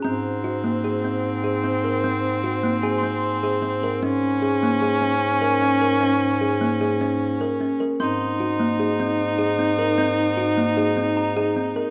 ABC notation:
X:1
M:5/4
L:1/16
Q:1/4=151
K:Abmix
V:1 name="Glockenspiel"
b6- b z12 z | z8 a c'6- c' z4 | z16 z4 | z16 z4 |
c'6- c' z12 z | z12 b6- b z |]
V:2 name="Kalimba"
C4 G2 B,2 A2 C4 A2 C2 B2 | C4 G2 B,2 A2 C4 A2 C2 B2 | D4 A2 B,2 A2 D4 B2 D2 B2 | D4 A2 B,2 A2 D4 B2 D2 B2 |
C4 G2 B,2 A2 C4 A2 C2 B2 | C4 G2 B,2 A2 C4 A2 C2 B2 |]
V:3 name="Viola"
C16- C4- | C16- C4 | D16- D4- | D16- D2 z2 |
E16- E4- | E16- E4 |]
V:4 name="Bass clarinet" clef=bass
A,,16- A,,4- | A,,16- A,,4 | A,,16- A,,4- | A,,16- A,,4 |
A,,16- A,,4- | A,,16- A,,4 |]